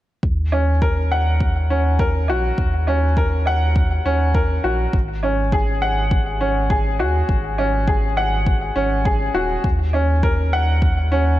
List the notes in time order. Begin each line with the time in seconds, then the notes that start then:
0.23 D#2, kick
0.52 C#4, low woodblock
0.82 A#4, kick
1.12 F#5
1.40 kick
1.70 C#4
1.99 A#4, kick
2.28 A#1 F#4, low woodblock
2.58 D#2, kick
2.87 C#4, low woodblock
3.17 A#4, kick
3.46 F#5, low woodblock
3.76 kick
4.05 D#2 C#4
4.35 A#4, kick
4.64 A#1 F#4
4.93 G#1, kick
5.23 C#4, low woodblock
5.52 G#4, kick
5.82 F#5
6.11 kick
6.41 C#4
6.70 G#4, kick
6.99 D#2 F#4, low woodblock
7.29 G#1, kick
7.58 C#4, low woodblock
7.88 G#4, kick
8.17 F#5, low woodblock
8.46 kick
8.76 G#1 C#4
9.05 G#4, kick
9.34 D#1 F#4
9.64 D#2, kick
9.93 C#4, low woodblock
10.23 A#4, kick
10.53 F#5
10.82 kick
11.12 C#4